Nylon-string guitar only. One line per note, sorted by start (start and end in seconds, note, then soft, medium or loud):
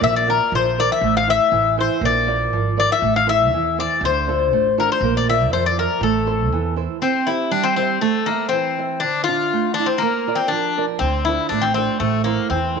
0.01 0.50 A#3 medium
0.27 0.67 F4 medium
0.27 0.67 A#4 soft
0.27 0.68 D5 medium
0.52 1.00 F3 medium
0.78 0.97 F4 soft
0.78 0.98 A#4 soft
0.78 0.98 D5 medium
1.04 1.51 A3 medium
1.27 1.67 E4 medium
1.27 1.67 A4 soft
1.27 1.67 C5 medium
1.52 2.00 E3 medium
1.77 1.97 E4 soft
1.77 1.97 A4 soft
1.77 1.98 C5 medium
2.02 2.50 A#3 medium
2.27 2.67 F4 medium
2.27 2.67 A#4 soft
2.27 2.68 D5 medium
2.53 3.01 F3 medium
2.77 2.97 F4 soft
2.77 2.97 A#4 soft
2.77 2.97 D5 medium
3.03 3.51 A3 medium
3.27 3.67 E4 medium
3.27 3.67 A4 soft
3.27 3.67 C5 medium
3.54 4.01 E3 medium
3.78 3.98 E4 soft
3.78 3.98 A4 soft
3.78 3.98 C5 medium
4.04 4.51 D3 medium
4.27 4.67 D4 medium
4.27 4.67 F4 soft
4.27 4.68 A4 medium
4.53 5.01 A3 medium
4.78 4.97 D4 medium
4.78 4.97 F4 soft
4.78 4.97 A4 medium
5.04 5.51 A#3 medium
5.29 5.68 F4 medium
5.29 5.68 A#4 medium
5.29 5.68 D5 medium
5.53 6.01 F3 medium
5.78 5.97 F4 soft
5.78 5.98 A#4 soft
5.78 5.98 D5 medium
6.03 6.51 A3 medium
6.26 6.66 E4 medium
6.26 6.67 A4 soft
6.26 6.67 C5 medium
6.52 7.00 E3 medium
6.76 6.96 E4 soft
6.76 6.96 A4 soft
6.76 6.97 C5 medium
7.02 7.50 C4 medium
7.27 7.67 G4 medium
7.27 7.67 C5 medium
7.27 7.67 E5 medium
7.51 8.00 G3 medium
7.78 7.97 G4 soft
7.78 7.97 C5 soft
7.78 7.98 E5 soft
8.02 8.50 A3 medium
8.27 8.67 A4 medium
8.27 8.67 C5 soft
8.27 8.67 E5 medium
8.52 9.00 E3 medium
8.78 8.97 A4 soft
8.78 8.98 C5 soft
8.78 8.98 E5 soft
9.03 9.51 D3 medium
9.28 9.68 D4 medium
9.28 9.68 F4 medium
9.28 9.68 E5 soft
9.53 10.01 A3 medium
9.79 9.98 D4 soft
9.79 9.98 E4 soft
9.79 9.98 F4 medium
10.02 10.50 A#3 medium
10.27 10.67 F4 medium
10.27 10.67 A#4 soft
10.27 10.67 D5 medium
10.52 11.00 F3 medium
10.77 10.97 F4 soft
10.77 10.97 A#4 soft
10.77 10.97 D5 medium
11.03 11.51 D3 medium
11.28 11.67 D4 soft
11.28 11.68 F4 soft
11.28 11.68 A4 medium
11.52 12.01 A3 medium
11.77 11.97 D4 soft
11.77 11.97 F4 soft
11.77 11.97 A4 medium
12.02 12.51 A3 medium
12.26 12.66 E4 medium
12.26 12.66 A4 soft
12.26 12.67 C5 medium
12.52 12.80 E3 medium
12.76 12.80 E4 soft
12.76 12.80 A4 soft